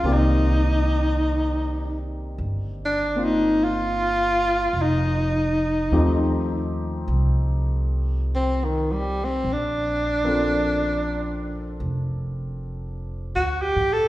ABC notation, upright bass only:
X:1
M:4/4
L:1/8
Q:"Swing" 1/4=51
K:Fmix
V:1 name="Upright bass" clef=bass
C,,4 G,,,4 | F,,,2 E,,2 C,,4 | B,,,4 F,,,2- (3F,,, D,, A,, |]